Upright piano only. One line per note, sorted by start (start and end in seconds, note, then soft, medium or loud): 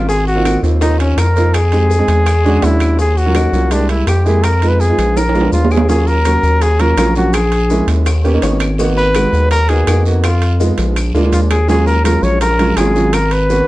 0.36 0.42 A#3 medium
0.36 0.42 C4 medium
0.36 0.42 D#4 medium
0.36 0.42 F4 medium
0.45 0.58 A#3 medium
0.45 0.58 C4 medium
0.45 0.58 D#4 medium
0.45 0.58 F4 medium
0.63 0.76 A#3 medium
0.63 0.76 C4 medium
0.63 0.76 D#4 medium
0.63 0.76 F4 medium
0.81 1.19 A#3 medium
0.81 1.20 C4 medium
0.81 1.19 D#4 medium
0.81 1.20 F4 medium
1.36 1.54 A#3 medium
1.36 1.54 C4 medium
1.36 1.54 D#4 medium
1.36 1.55 F4 medium
1.72 1.91 G#3 medium
1.72 1.92 C4 medium
1.72 1.92 D#4 medium
1.72 1.92 G4 medium
1.98 2.26 G#3 medium
1.98 2.26 C4 medium
1.98 2.26 D#4 medium
1.98 2.27 G#4 medium
2.45 2.96 G#3 loud
2.45 2.96 C#4 medium
2.45 2.96 D4 medium
2.45 2.96 F#4 loud
3.26 3.33 F#3 medium
3.26 3.32 A#3 medium
3.26 3.33 C#4 medium
3.26 3.33 F4 medium
3.35 3.48 F#3 medium
3.35 3.48 A#3 medium
3.35 3.48 C#4 medium
3.35 3.48 D#4 medium
3.53 3.66 F#3 medium
3.53 3.66 A#3 medium
3.53 3.66 C#4 medium
3.53 3.66 F4 medium
3.71 4.09 G#3 medium
3.71 4.09 A#3 medium
3.71 4.09 E4 medium
3.71 4.09 G4 medium
4.25 4.44 G#3 medium
4.25 4.44 A#3 medium
4.25 4.44 E4 medium
4.25 4.44 G4 medium
4.62 4.81 G#3 medium
4.62 4.81 B3 medium
4.62 4.81 D#4 medium
4.62 4.81 F4 medium
4.89 5.17 G#3 medium
4.89 5.17 B3 medium
4.89 5.17 D#4 medium
4.89 5.17 F4 medium
5.34 5.85 G#3 medium
5.34 5.85 B3 medium
5.34 5.85 D4 medium
5.34 5.85 F4 medium
5.88 6.14 F#3 medium
5.88 6.14 A#3 medium
5.88 6.14 C#4 medium
5.88 6.14 F4 medium
6.25 6.63 F#3 medium
6.25 6.63 A#3 medium
6.25 6.63 C#4 medium
6.25 6.63 F#4 medium
6.79 6.92 F#3 medium
6.79 6.92 A#3 medium
6.79 6.92 C#4 medium
6.79 6.92 F4 medium
6.97 7.10 F#3 medium
6.97 7.10 A#3 medium
6.97 7.10 C#4 medium
6.97 7.10 F4 medium
7.16 7.34 F#3 medium
7.16 7.34 A#3 medium
7.16 7.34 C#4 medium
7.16 7.34 F4 medium
7.70 8.06 G#3 medium
7.70 8.06 A#3 medium
7.70 8.06 C#4 medium
7.70 8.07 E4 medium
8.24 8.31 A#3 medium
8.24 8.31 B3 medium
8.24 8.31 C#4 medium
8.24 8.31 G4 loud
8.34 8.65 A#3 medium
8.34 8.65 B3 medium
8.34 8.65 C#4 medium
8.34 8.65 D#4 loud
8.43 8.76 C#5 medium
8.79 9.04 A#3 loud
8.79 9.04 B3 medium
8.79 9.04 D#4 medium
8.79 9.04 F#4 loud
9.16 9.53 G#3 medium
9.16 9.53 B3 medium
9.16 9.53 D#4 medium
9.16 9.53 F#4 medium
9.69 9.82 A#3 medium
9.69 9.82 B3 medium
9.69 9.82 D#4 medium
9.69 9.82 F#4 medium
9.87 10.00 A#3 medium
9.87 10.00 B3 medium
9.87 10.00 D#4 medium
9.87 10.00 F#4 medium
10.06 10.24 A#3 medium
10.06 10.24 B3 medium
10.06 10.24 D#4 medium
10.06 10.24 F#4 medium
10.60 10.96 G#3 medium
10.60 10.96 B3 medium
10.60 10.96 D#4 medium
10.60 10.96 F4 medium
11.14 11.21 G#3 medium
11.14 11.21 A#3 medium
11.14 11.21 D4 medium
11.14 11.21 F4 medium
11.23 11.55 G#3 medium
11.23 11.55 A#3 medium
11.23 11.55 D4 medium
11.23 11.55 F4 medium
11.68 11.94 F#3 medium
11.68 11.94 G#3 medium
11.68 11.94 C#4 medium
11.68 11.94 F4 medium
12.04 12.43 F#3 medium
12.04 12.43 G#3 medium
12.04 12.42 C#4 medium
12.04 12.43 F4 medium
12.59 12.72 F#3 medium
12.59 12.72 G#3 medium
12.59 12.72 C#4 medium
12.59 12.72 F4 medium
12.77 12.90 F#3 medium
12.77 12.90 G#3 medium
12.77 12.90 C#4 medium
12.77 12.90 F4 medium
12.95 13.14 F#3 medium
12.95 13.14 G#3 medium
12.95 13.14 C#4 medium
12.95 13.14 F4 medium
13.50 13.68 A#3 medium
13.50 13.68 B3 medium
13.50 13.68 C#4 medium
13.50 13.68 F#4 medium